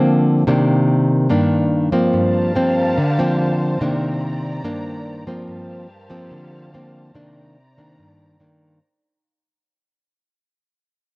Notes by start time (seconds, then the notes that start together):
Already playing: D3 F3 A#3 C4
0.47 C3 D#3 A#3 D4
1.29 G2 D#3 A#3 D4
1.92 F3 A#3 C4
2.13 G2 G4 A#4 C5 F5 A5
2.55 F3 A#3 C4
2.98 D3
3.19 F3 A#3 C4
3.80 C3 D#3 A#3 D4 D5 A#5
4.64 G2 D#3 A#3 D4
5.27 F3 A#3 C4
5.47 G2 G4 A#4 C5 F5 A5
6.10 F3 A#3 C4
6.31 D3
6.74 F3 A#3 C4
7.15 C3 D#3 A#3 D4 D5 A#5
7.78 D#3 A#3 D4
7.99 G2
8.40 D#3 A#3 D4